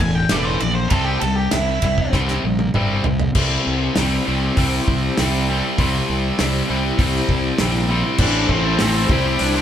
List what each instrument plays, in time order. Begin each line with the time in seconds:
0.00 fingered electric bass E1, distorted electric guitar A2 E3, lead electric guitar G#5, kick
0.15 lead electric guitar G5
0.29 fingered electric bass E1, distorted electric guitar A2 E3 A3, lead electric guitar D5, snare, ride
0.45 lead electric guitar C5
0.60 fingered electric bass A#1, distorted electric guitar A2 E3, lead electric guitar D5, ride
0.75 lead electric guitar C5
0.89 fingered electric bass C2, distorted electric guitar C3 G3 C4, lead electric guitar A4, kick, ride
1.05 lead electric guitar G4
1.20 fingered electric bass C2, distorted electric guitar C3 G3, lead electric guitar A4, ride
1.36 lead electric guitar G4
1.51 fingered electric bass C2, distorted electric guitar C3 G3, lead electric guitar E4, snare, ride
1.82 fingered electric bass C2, distorted electric guitar C3 G3, kick, ride
1.98 kick
2.13 fingered electric bass C2, distorted electric guitar C3 G3 C4, kick, snare
2.28 snare
2.44 fingered electric bass A#1, distorted electric guitar C3 G3
2.59 high tom
2.74 fingered electric bass G1, distorted electric guitar C3 G3 C4, mid tom
3.04 fingered electric bass C2, distorted electric guitar C3 G3, floor tom
3.19 floor tom
3.35 fingered electric bass C2, distorted electric guitar C3 G3 C4, string machine C4 E4 G4 C5, kick, crash
3.67 fingered electric bass C2
3.96 fingered electric bass C2, distorted electric guitar C3 G3 C4, snare, open hi-hat
4.26 fingered electric bass C2, distorted electric guitar C3 G3 C4
4.57 fingered electric bass C2, distorted electric guitar C3 G3 C4, kick, open hi-hat
4.88 fingered electric bass C2, kick
5.18 fingered electric bass C2, distorted electric guitar C3 G3 C4, snare, open hi-hat
5.49 distorted electric guitar C3 G3 C4
5.78 fingered electric bass C2, distorted electric guitar C3 G3 C4, string machine E4 G4 C5, kick, open hi-hat
6.10 fingered electric bass C2
6.39 fingered electric bass C2, distorted electric guitar C3 G3 C4, snare, open hi-hat
6.69 fingered electric bass C2, distorted electric guitar C3 G3 C4
6.98 fingered electric bass C2, distorted electric guitar C3 G3 C4, kick, open hi-hat
7.29 fingered electric bass C2, kick
7.58 fingered electric bass A#1, distorted electric guitar C3 G3 C4, snare, open hi-hat
7.90 distorted electric guitar C3 G3 C4
8.18 fingered electric bass A1, distorted electric guitar A2 E3 A3 C4 E4 A4, upright piano A3 C4 E4 G4, string machine A3 C4 E4 G4, lead electric guitar D4, kick, crash
8.49 fingered electric bass A1, lead electric guitar C4, kick
8.65 distorted electric guitar A3 C4 E4 A4
8.78 fingered electric bass A1, distorted electric guitar A2 E3 A3 C4 E4 A4, upright piano A3 C4 E4 G4, lead electric guitar C4, snare, open hi-hat
8.95 distorted electric guitar A3 C4 E4 A4
9.09 fingered electric bass C2, distorted electric guitar C3 G3 C4 E4, upright piano G3 C4 E4 G4, string machine G3 C4 E4 G4, kick
9.13 distorted electric guitar G4 C5
9.25 distorted electric guitar C4 E4 G4 C5
9.39 fingered electric bass C2, lead electric guitar D4, open hi-hat
9.56 distorted electric guitar C4 E4 G4 C5